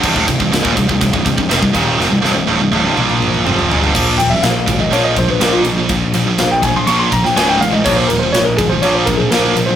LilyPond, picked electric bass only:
\new Staff \with { instrumentName = "Picked electric bass" } { \clef bass \time 4/4 \key bes \dorian \tempo 4 = 123 c,,16 d,,16 c,,16 c,,16 c,,16 ees,,16 c,,16 c,,16 c,,16 c,,16 c,,16 c,,16 f,,16 c,,16 ees,,8 | f,,16 c,,16 c,,16 c,,16 d,,16 c,,16 d,,16 c,,16 bes,,4 f,,8 ees,,16 g,,16 | bes,,8 ees,,8 bes,,8 aes,,8 bes,,8 bes,,8 bes,,8 bes,,8 | bes,,8 bes,,8 bes,,8 bes,,8 bes,,4 des,,8 a,,8 |
bes,,8 ees,,8 bes,,8 aes,,8 bes,,8 bes,,8 bes,,8 bes,,8 | }